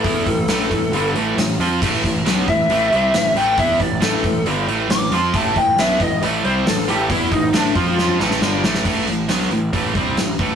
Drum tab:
CC |----------------|x---------------|----------------|----------------|
HH |o-o-o-o-o-o-o-o-|--o-o-o-o-o-o-o-|o-o-o-o-o-o-o-o-|o-o-o-o-o-o-o-o-|
SD |----o-------o---|----o-------o---|----o-------o---|----o-------oo--|
BD |o-o---o---------|o-o---o---------|o-o---o---------|o-o---o---------|

CC |----------------|x---------------|
HH |o-o-o-o---------|--o-o-o-o-o-o-o-|
SD |----o---o-ooo-oo|----oo------o---|
BD |o-o---o---------|o-------o-o---o-|